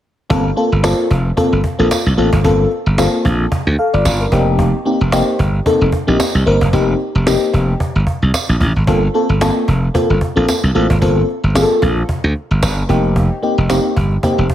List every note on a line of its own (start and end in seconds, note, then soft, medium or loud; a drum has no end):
0.30 0.50 G1 loud
0.30 0.43 A#3 medium
0.30 0.43 C4 medium
0.30 0.43 F4 medium
0.30 0.43 A4 loud
0.30 cajon bass loud
0.56 0.70 A#3 medium
0.56 0.70 C4 medium
0.56 0.70 F4 medium
0.56 0.70 A4 medium
0.56 cajon slap soft
0.72 0.92 G1 medium
0.72 cajon slap soft
0.83 1.07 A#3 medium
0.83 1.07 C4 medium
0.83 1.07 F4 medium
0.83 1.07 A4 medium
0.83 cajon slap loud
0.83 cajon slap medium
0.83 tambourine medium
1.11 1.30 F1 medium
1.11 cajon bass medium
1.25 cajon slap soft
1.37 1.55 A#3 medium
1.37 1.55 C4 medium
1.37 1.56 F4 medium
1.37 1.56 A4 medium
1.37 cajon bass loud
1.52 1.61 G1 medium
1.64 cajon bass medium
1.79 1.88 A#1 medium
1.79 1.95 A#3 medium
1.79 1.95 C4 medium
1.79 1.95 F4 medium
1.79 1.95 A4 medium
1.91 cajon slap loud
1.91 cajon slap medium
1.91 tambourine loud
2.06 2.15 C2 medium
2.06 cajon slap soft
2.17 2.29 A1 medium
2.17 2.30 A#3 medium
2.17 2.30 C4 medium
2.17 2.31 F4 medium
2.17 2.31 A4 medium
2.17 cajon slap soft
2.33 2.41 G#1 medium
2.33 cajon bass loud
2.44 2.64 G1 loud
2.44 2.68 A#3 medium
2.44 2.68 C4 medium
2.44 2.68 F4 medium
2.44 2.68 A4 loud
2.44 cajon bass loud
2.71 cajon slap soft
2.86 3.06 G1 medium
2.86 cajon slap soft
2.98 3.45 A#3 medium
2.98 3.45 C4 medium
2.98 3.45 F4 medium
2.98 3.45 A4 medium
2.98 cajon slap loud
2.98 cajon slap medium
2.98 tambourine medium
3.25 3.45 A#1 medium
3.25 cajon bass medium
3.39 cajon slap soft
3.52 cajon bass loud
3.67 3.75 D2 medium
3.67 cajon slap soft
3.78 3.93 A4 medium
3.78 3.93 F5 medium
3.78 cajon slap soft
3.93 4.02 G1 medium
3.93 4.19 F4 medium
3.93 4.19 D5 medium
3.93 cajon slap soft
4.05 4.25 G1 medium
4.05 cajon slap loud
4.05 cajon slap medium
4.05 tambourine loud
4.20 4.46 D4 soft
4.20 4.46 A#4 medium
4.20 cajon slap soft
4.32 4.72 F1 medium
4.32 4.76 A#3 medium
4.32 4.76 C4 medium
4.32 4.76 D#4 medium
4.32 4.77 G4 loud
4.32 cajon bass medium
4.47 cajon slap soft
4.59 cajon bass loud
4.85 4.98 A#3 medium
4.85 4.98 C4 medium
4.85 4.99 D#4 medium
4.85 4.99 G4 medium
4.85 cajon slap soft
5.01 5.21 F1 medium
5.01 cajon slap soft
5.12 5.36 A#3 medium
5.12 5.36 C4 medium
5.12 5.36 D#4 medium
5.12 5.36 G4 loud
5.12 cajon slap loud
5.12 cajon slap medium
5.12 tambourine medium
5.39 5.59 G1 medium
5.39 cajon bass medium
5.54 cajon slap soft
5.66 5.84 A#3 medium
5.66 5.84 C4 medium
5.66 5.84 D#4 medium
5.66 5.85 A4 medium
5.66 cajon bass loud
5.81 5.90 F1 medium
5.81 cajon slap soft
5.92 cajon bass medium
6.07 6.17 A#1 medium
6.07 6.23 A#3 medium
6.07 6.24 C4 medium
6.07 6.24 D#4 medium
6.07 6.24 G4 medium
6.07 cajon slap soft
6.20 cajon slap loud
6.20 cajon slap medium
6.20 tambourine loud
6.35 6.43 C2 medium
6.35 cajon slap soft
6.46 6.58 G1 medium
6.46 6.59 A#3 medium
6.46 6.59 C4 medium
6.46 6.59 D#4 medium
6.46 6.59 A#4 medium
6.46 cajon slap soft
6.61 6.70 F#1 medium
6.61 cajon bass medium
6.73 6.93 F1 loud
6.73 6.96 A#3 medium
6.73 6.96 C4 medium
6.73 6.97 D#4 medium
6.73 6.97 G4 medium
6.73 cajon bass loud
6.88 cajon slap soft
7.00 cajon slap soft
7.15 7.35 F1 medium
7.15 cajon slap soft
7.26 7.73 A#3 medium
7.26 7.73 C4 medium
7.26 7.73 D#4 medium
7.26 7.74 G4 medium
7.26 cajon slap loud
7.26 cajon slap medium
7.26 tambourine medium
7.42 cajon slap soft
7.54 7.73 F1 medium
7.54 cajon bass medium
7.68 cajon slap soft
7.80 cajon bass loud
7.95 8.04 G1 medium
7.95 cajon slap soft
8.07 cajon bass medium
8.22 8.31 C2 medium
8.22 cajon slap soft
8.34 cajon slap loud
8.34 cajon slap medium
8.34 tambourine loud
8.49 8.58 A#1 medium
8.49 cajon slap soft
8.61 8.72 A1 medium
8.61 cajon bass medium
8.76 8.85 G#1 medium
8.76 cajon slap soft
8.87 9.07 G1 medium
8.87 9.00 A#3 medium
8.87 9.00 C4 medium
8.87 9.00 F4 medium
8.87 9.01 A4 loud
8.87 cajon bass loud
9.14 9.27 A#3 medium
9.14 9.27 C4 medium
9.14 9.27 F4 medium
9.14 9.27 A4 medium
9.14 cajon slap soft
9.29 9.49 G1 medium
9.29 cajon slap soft
9.41 9.64 A#3 medium
9.41 9.64 C4 medium
9.41 9.64 F4 medium
9.41 9.65 A4 medium
9.41 cajon slap loud
9.41 cajon slap medium
9.41 tambourine medium
9.68 9.88 F1 medium
9.68 cajon bass medium
9.83 cajon slap soft
9.94 10.13 A#3 medium
9.94 10.13 C4 medium
9.94 10.13 F4 medium
9.94 10.13 A4 medium
9.94 cajon bass loud
10.10 10.18 G1 medium
10.21 cajon bass medium
10.36 10.45 A#1 medium
10.36 10.52 A#3 medium
10.36 10.52 C4 medium
10.36 10.52 F4 medium
10.36 10.52 A4 medium
10.48 cajon slap loud
10.48 cajon slap medium
10.48 tambourine loud
10.63 10.72 C2 medium
10.63 cajon slap soft
10.75 10.86 A1 medium
10.75 10.88 A#3 medium
10.75 10.88 C4 medium
10.75 10.88 F4 medium
10.75 10.88 A4 medium
10.75 cajon slap soft
10.90 10.99 G#1 medium
10.90 cajon bass medium
11.01 11.22 G1 loud
11.01 11.25 A#3 medium
11.01 11.25 C4 medium
11.01 11.25 F4 medium
11.01 11.25 A4 loud
11.01 cajon bass loud
11.29 cajon slap soft
11.44 11.63 G1 medium
11.44 cajon slap soft
11.55 12.02 A#3 medium
11.55 12.02 C4 medium
11.55 12.02 F4 medium
11.55 11.63 G#4 medium
11.55 cajon slap loud
11.55 cajon slap medium
11.55 tambourine medium
11.62 12.05 A4 medium
11.82 12.02 A#1 medium
11.82 cajon bass medium
11.97 cajon slap soft
12.09 cajon bass loud
12.24 12.33 D2 medium
12.36 cajon slap soft
12.51 12.59 G1 medium
12.51 cajon slap soft
12.63 12.82 G1 medium
12.63 cajon slap loud
12.63 cajon slap medium
12.63 tambourine loud
12.77 cajon slap soft
12.89 13.29 F1 medium
12.89 13.33 A#3 medium
12.89 13.33 C4 medium
12.89 13.33 D#4 medium
12.89 13.33 G4 medium
12.89 cajon bass medium
13.04 cajon slap soft
13.16 cajon bass loud
13.43 13.55 A#3 medium
13.43 13.56 C4 medium
13.43 13.56 D#4 medium
13.43 13.56 G4 medium
13.43 cajon slap soft
13.58 13.78 F1 medium
13.58 cajon slap soft
13.69 13.93 A#3 medium
13.69 13.93 C4 medium
13.69 13.93 D#4 medium
13.69 13.93 G4 medium
13.69 cajon slap loud
13.69 cajon slap medium
13.69 tambourine medium
13.97 14.16 G1 medium
13.97 cajon bass medium
14.11 cajon slap soft
14.23 14.41 A#3 medium
14.23 14.42 C4 medium
14.23 14.42 D#4 medium
14.23 14.42 G4 medium
14.23 cajon bass loud
14.38 14.47 F1 medium
14.38 cajon slap soft
14.50 cajon bass medium